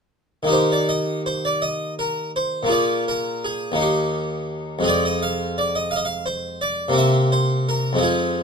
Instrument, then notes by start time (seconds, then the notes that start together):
harpsichord
0.43 D#3 A#3 D#4
0.49 G4 C5
0.72 D5
0.89 D#5
1.26 C5
1.45 D5
1.62 D#5
1.99 A#4
2.36 C5
2.63 A#2 A#3 F4
2.69 G#4 D5
3.08 A#4
3.44 G#4
3.72 D#2 A#3 D#4
3.81 G4
4.79 F2 G#3 C4
4.84 G#4
4.88 D5
5.05 D#5
5.23 F5
5.58 D5
5.75 D#5
5.91 F5
5.96 D#5
6.05 F5
6.26 C5
6.61 D5
6.88 C3 A#3 C4
6.93 G4
6.98 E5
7.32 C5
7.69 A#4
7.93 F2 G#3 C4
7.99 F4 G#4